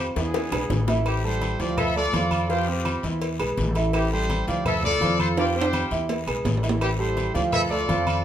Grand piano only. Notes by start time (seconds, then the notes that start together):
Already playing: C5
0.17 E3 E4 E5
0.53 G#3 G#4 B4
0.88 E3 E4 E5
1.24 G3 G4 A4
1.60 F3 F4 F5
1.96 A3 A4 D5
2.14 F3 F4 F5
2.49 F3 F4 F5
2.68 C4 C5
3.04 E3 E4 E5
3.40 G#3 G#4 B4
3.76 E3 E4 E5
4.12 G3 G4 A4
4.48 F3 F4 F5
4.84 A3 A4 D5
5.01 F3 F4 F5
5.37 F3 F4 F5
5.55 C4 C5
5.91 E3 E4 E5
6.28 G#3 G#4 B4
6.63 E3 E4 E5
6.99 G3 G4 A4
7.34 F3 F4 F5
7.70 A3 A4 D5
7.89 F3 F4 F5